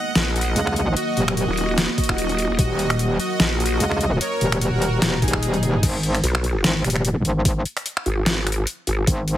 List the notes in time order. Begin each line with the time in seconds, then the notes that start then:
Already playing: D#3 F#3 A#3 D#5 F#5
0.15 A#1, snare, closed hi-hat
0.36 D#5 F#5, closed hi-hat
0.41 closed hi-hat
0.56 C#2, closed hi-hat
0.67 finger snap
0.76 closed hi-hat
0.96 F#4 D#5, closed hi-hat
1.17 D#1, closed hi-hat
1.28 finger snap, closed hi-hat
1.37 F#4 D#5, closed hi-hat
1.48 D#1
1.57 closed hi-hat
1.78 snare, closed hi-hat
1.98 F#4 D#5, kick, closed hi-hat
2.04 closed hi-hat
2.09 D#1, finger snap, kick
2.18 closed hi-hat
2.29 closed hi-hat
2.38 closed hi-hat
2.50 D#1
2.59 D#1 F#4 D#5, kick, closed hi-hat
2.79 closed hi-hat
2.90 finger snap, closed hi-hat
2.99 closed hi-hat
3.20 F#4 D#5, closed hi-hat
3.40 A#1, snare, closed hi-hat
3.60 F#4 D#5, closed hi-hat
3.66 closed hi-hat
3.80 C#2, closed hi-hat
3.91 finger snap
4.01 closed hi-hat
4.21 A#4 C#5, closed hi-hat
4.41 D#1, closed hi-hat
4.52 finger snap, closed hi-hat
4.61 F#4 A#4, closed hi-hat
4.72 D#1
4.82 closed hi-hat
5.02 D#1, snare, closed hi-hat
5.22 D#4 G#4, kick, closed hi-hat
5.28 closed hi-hat
5.33 finger snap, kick
5.43 closed hi-hat
5.54 closed hi-hat, high tom
5.63 closed hi-hat, mid tom
5.74 mid tom
5.83 G#1, kick, closed hi-hat, crash
6.03 closed hi-hat
6.15 finger snap, closed hi-hat
6.24 B1, closed hi-hat
6.35 finger snap
6.44 closed hi-hat
6.64 G#1, snare, closed hi-hat
6.84 D#1, finger snap, closed hi-hat
6.90 closed hi-hat
6.96 finger snap
7.05 closed hi-hat
7.25 G#1, closed hi-hat
7.45 kick, closed hi-hat
7.65 closed hi-hat
7.77 finger snap, closed hi-hat
7.86 closed hi-hat
7.97 finger snap
8.06 G#1, closed hi-hat
8.26 snare, closed hi-hat
8.47 finger snap, closed hi-hat
8.52 closed hi-hat
8.67 closed hi-hat
8.87 G#1, closed hi-hat
9.07 G#1, kick, closed hi-hat
9.28 closed hi-hat